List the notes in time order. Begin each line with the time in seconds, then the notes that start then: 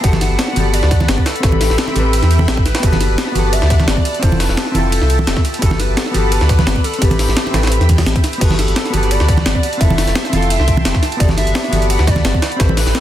Already playing: A5
0.01 G1 B3 F#4 D5 F#5 B5, kick, closed hi-hat, ride
0.05 G4 A4
0.13 snare, high conga
0.21 F#5, snare, closed hi-hat, ride
0.31 G1
0.39 snare, closed hi-hat, ride
0.48 snare
0.53 G1 B3 F#4, closed hi-hat, ride, high conga
0.58 G4 A4
0.73 D5, closed hi-hat, ride
0.83 D2, snare
0.91 kick, snare, closed hi-hat, ride
1.00 snare, high conga
1.08 G1 B4, snare, closed hi-hat, ride
1.18 kick, muted conga
1.26 C4 A4 E5 G5, snare, closed hi-hat, ride
1.36 closed hi-hat
1.40 A1 C4 G4, kick, snare, closed hi-hat, ride
1.45 A4 B4
1.52 high conga
1.61 snare, closed hi-hat, open hi-hat
1.70 A1, snare
1.78 snare, closed hi-hat, ride
1.88 snare, muted conga
1.92 A1 C4 G4, closed hi-hat, ride, high conga
1.97 A4 B4
2.13 closed hi-hat, ride
2.23 E2, snare, closed hi-hat
2.31 closed hi-hat, ride
2.39 high conga
2.48 A1, snare, closed hi-hat, ride
2.57 kick
2.65 B4, snare, closed hi-hat, ride
2.75 snare, closed hi-hat, ride
2.80 G1 B3 F#4 D5 F#5 A5, kick, closed hi-hat, ride
2.84 G4 A4
2.92 snare, high conga
3.00 snare, closed hi-hat, ride
3.10 G1
3.18 snare, closed hi-hat, ride
3.27 snare
3.32 G1 B3 F#4, closed hi-hat, ride, high conga
3.37 G4 A4
3.52 E5, closed hi-hat, ride
3.62 D2, snare
3.70 kick, snare, closed hi-hat, ride
3.80 snare, high conga
3.87 G1 D5, snare, closed hi-hat, ride
3.97 kick, muted conga
4.05 closed hi-hat, ride
4.14 closed hi-hat
4.19 F1 C4 E4 C5 E5 G5 A5, kick, closed hi-hat, ride
4.24 F4 A4
4.32 high conga
4.39 B4, snare, closed hi-hat, open hi-hat
4.49 F1, snare
4.57 snare, closed hi-hat, ride
4.67 snare
4.72 F1 C4 E4 A4, closed hi-hat, ride, high conga
4.76 F4 A4
4.92 closed hi-hat, ride
5.02 C2, snare
5.10 closed hi-hat, ride
5.19 high conga
5.27 F1, snare, closed hi-hat, ride
5.37 kick, snare
5.45 closed hi-hat, ride
5.54 closed hi-hat, ride
5.59 G1 B3 F#4 A4 D5 F#5 A5 B5, kick, closed hi-hat, ride
5.64 G4 A4
5.71 snare, high conga
5.79 B4, snare, closed hi-hat, ride
5.89 G1
5.97 A4, snare, closed hi-hat, ride
6.06 snare
6.11 G1 B3 F#4, closed hi-hat, ride, high conga
6.16 G4 A4
6.31 B4, closed hi-hat, ride
6.41 D2, snare
6.49 kick, snare, closed hi-hat, ride
6.59 snare, high conga
6.67 G1, snare, closed hi-hat, ride
6.76 kick, muted conga
6.84 C4 A4 E5 G5, closed hi-hat, ride
6.94 closed hi-hat
6.98 A1 C4 G4, kick, closed hi-hat, ride
7.03 A4 B4
7.11 closed hi-hat, high conga
7.19 snare, closed hi-hat, open hi-hat
7.28 A1, snare
7.37 snare, closed hi-hat, ride
7.46 snare, muted conga
7.51 A1 C4 G4, snare, closed hi-hat, ride, high conga
7.56 A4 B4
7.63 snare, ride
7.67 snare, ride
7.72 closed hi-hat
7.80 E2, snare, closed hi-hat
7.89 kick, closed hi-hat, ride, muted conga
7.98 snare, ride, high conga
8.06 A1, snare, closed hi-hat
8.16 kick, closed hi-hat, ride
8.24 snare, closed hi-hat, ride
8.33 closed hi-hat, ride
8.38 G1 B3 F#4 B4 D5 F#5 A5 B5, kick, closed hi-hat, crash, ride
8.42 G4 A4
8.50 snare, high conga
8.59 A4, snare, closed hi-hat, ride
8.68 G1, closed hi-hat
8.76 A4, snare, closed hi-hat, ride
8.86 snare, closed hi-hat
8.90 G1 B3 F#4 B4, closed hi-hat, ride
8.94 G4 A4, high conga
9.03 closed hi-hat
9.11 D5, closed hi-hat, ride
9.20 D2, snare
9.28 kick, snare, closed hi-hat, ride
9.37 snare, high conga
9.46 G1, snare, closed hi-hat, ride
9.55 kick, muted conga
9.63 closed hi-hat, ride
9.73 closed hi-hat
9.78 F1 C4 E4 E5 G5 C6, kick, closed hi-hat, ride
9.82 F4 A4
9.90 high conga
9.98 snare, closed hi-hat, open hi-hat
10.07 F1, snare, closed hi-hat
10.15 snare, closed hi-hat, ride
10.25 snare, closed hi-hat
10.30 F1 C4 E4 F5, closed hi-hat, ride, high conga
10.34 F4 A4
10.42 closed hi-hat
10.50 E5, closed hi-hat, ride
10.60 C2, snare
10.68 kick, closed hi-hat, ride
10.77 high conga
10.85 F1, snare, closed hi-hat, ride
10.95 kick, snare
11.03 snare, closed hi-hat, ride
11.12 closed hi-hat, ride
11.17 G1 B3 F#4 D5 F#5 B5, kick, closed hi-hat, ride
11.21 G4 A4
11.29 snare, high conga
11.37 E5, snare, closed hi-hat, ride
11.47 G1, closed hi-hat
11.55 snare, closed hi-hat, ride
11.64 snare, closed hi-hat
11.69 G1 B3 F#4, closed hi-hat, ride, high conga
11.74 G4 A4
11.82 closed hi-hat
11.90 F#5, closed hi-hat, ride
11.99 D2, snare
12.07 D5, kick, snare, closed hi-hat, ride
12.16 snare, high conga
12.25 G1, snare, closed hi-hat, ride
12.34 kick, muted conga
12.42 C4 E5 G5, snare, closed hi-hat, ride
12.52 closed hi-hat
12.56 A1 C4 G4 C5, kick, snare, closed hi-hat, ride
12.61 A4 B4
12.69 high conga
12.77 B4, snare, closed hi-hat, open hi-hat
12.87 A1, snare, closed hi-hat
12.95 A4, snare, closed hi-hat, ride